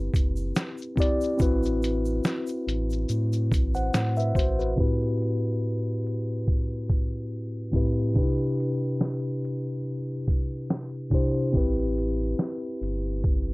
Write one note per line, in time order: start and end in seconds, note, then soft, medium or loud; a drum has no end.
0.00 0.96 C4 medium
0.00 0.97 E4 medium
0.00 0.99 G4 medium
0.00 1.42 B4 medium
0.14 0.52 F#1 medium
0.14 kick medium
0.14 closed hi-hat medium
0.14 shaker medium
0.16 shaker soft
0.36 shaker soft
0.56 snare loud
0.56 shaker medium
0.78 shaker soft
0.82 shaker soft
0.96 1.37 C4 medium
0.96 1.37 E4 medium
0.96 1.38 G4 medium
0.96 kick medium
0.96 shaker soft
1.00 1.39 D5 medium
1.00 closed hi-hat medium
1.00 shaker soft
1.21 shaker medium
1.23 shaker soft
1.38 2.21 A1 medium
1.38 2.98 C4 medium
1.38 2.99 E4 medium
1.38 3.00 F#4 medium
1.38 kick loud
1.38 shaker medium
1.42 3.00 B4 medium
1.42 shaker medium
1.63 shaker soft
1.65 shaker soft
1.82 closed hi-hat medium
1.82 shaker soft
1.84 shaker soft
2.05 shaker soft
2.24 snare loud
2.24 shaker medium
2.27 shaker medium
2.47 shaker medium
2.49 shaker soft
2.67 3.06 A1 medium
2.67 closed hi-hat medium
2.67 shaker soft
2.90 shaker medium
2.92 shaker soft
3.09 3.53 A2 loud
3.09 shaker medium
3.32 shaker soft
3.52 3.90 A1 medium
3.52 kick medium
3.52 closed hi-hat medium
3.52 shaker soft
3.54 shaker soft
3.74 4.15 C5 soft
3.74 4.15 F#5 medium
3.74 shaker soft
3.76 shaker soft
3.94 4.33 A2 loud
3.94 snare loud
3.94 shaker medium
4.16 4.35 B4 medium
4.16 4.35 E5 medium
4.16 shaker soft
4.19 shaker soft
4.35 4.74 A1 loud
4.35 4.58 F#4 medium
4.35 4.58 C5 medium
4.35 kick medium
4.35 closed hi-hat medium
4.35 shaker soft
4.39 shaker soft
4.59 5.00 F#4 medium
4.59 4.79 B4 medium
4.59 shaker medium
4.59 shaker soft
4.76 6.36 A2 medium
4.76 6.37 C4 medium
4.76 6.37 E4 medium
4.76 6.38 G4 medium
4.76 kick medium
4.80 6.39 B4 medium
5.22 closed hi-hat medium
6.07 closed hi-hat medium
6.48 kick medium
6.90 kick medium
6.90 closed hi-hat medium
7.72 8.13 A2 medium
7.72 8.13 C4 medium
7.72 8.14 E4 medium
7.72 8.14 G4 medium
7.72 kick medium
7.76 8.15 B4 medium
7.76 closed hi-hat medium
8.14 9.74 C3 medium
8.14 9.75 D4 medium
8.14 8.23 D#4 medium
8.14 9.76 G4 medium
8.14 kick medium
8.18 9.77 B4 medium
8.23 9.79 E4 medium
8.60 closed hi-hat medium
9.01 snare loud
9.45 closed hi-hat medium
10.28 kick medium
10.28 closed hi-hat medium
10.70 snare loud
11.10 11.51 C3 medium
11.10 11.51 D4 medium
11.10 11.52 E4 medium
11.10 11.52 G4 medium
11.10 kick medium
11.14 11.53 C5 medium
11.14 closed hi-hat medium
11.53 12.35 A1 medium
11.53 13.13 C4 medium
11.53 13.13 E4 medium
11.53 13.14 G4 medium
11.53 kick medium
11.57 13.15 B4 medium
11.98 closed hi-hat medium
12.39 snare loud
12.81 13.54 G1 medium
12.81 closed hi-hat medium
13.24 kick medium